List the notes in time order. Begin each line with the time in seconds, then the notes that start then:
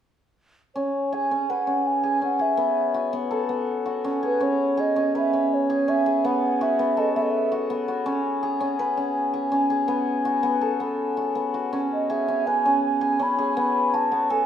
0.76 C#4 C#5
1.12 G#4 G#5
1.31 C#4
1.50 B4 F#5
1.67 C#4
1.87 G#5
2.03 G#4
2.22 C#4 F#5
2.39 G#4 E5
2.57 B3
2.94 F#4
3.13 B3
3.31 A4
3.49 B3
3.86 F#4
4.04 C#4
4.23 G#4 B4
4.40 C#4 C#5
4.77 G#4 D#5
4.96 C#4
5.15 B4 E5
5.33 C#4
5.54 C#5
5.70 G#4
5.88 C#4 E5
6.06 G#4
6.24 B3 F#5
6.61 F#4 E5
6.79 B3
6.97 A4 D#5
7.15 B3 E5
7.22 D#5
7.30 E5
7.52 F#4
7.70 B3
7.88 F#4
8.06 C#4
8.43 G#4
8.60 C#4
8.79 B4
8.97 C#4
9.34 G#4
9.52 C#4
9.70 G#4
9.88 B3
10.25 F#4
10.43 B3
10.61 A4
10.80 B3
11.17 F#4
11.35 B3
11.54 F#4
11.73 C#4
11.93 D#5
12.10 G#4 E5
12.28 C#4
12.46 B4 G#5
12.66 C#4
12.84 G#5
13.01 G#4
13.19 C#4 B5
13.38 G#4
13.57 B3 B5
13.94 F#4 A5
14.12 B3
14.30 A4 G#5